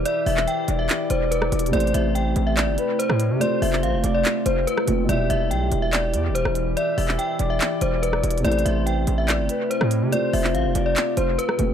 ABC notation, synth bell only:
X:1
M:4/4
L:1/16
Q:1/4=143
K:Ephr
V:1 name="Synth bell"
d2 e2 g3 e z2 c2 B2 z2 | d2 e2 g3 e d4 c4 | d2 e2 f3 d z2 c2 B2 z2 | d2 e2 g3 e d4 c4 |
d2 e2 g3 e z2 c2 B2 z2 | d2 e2 g3 e d4 c4 | d2 e2 f3 d z2 c2 B2 z2 |]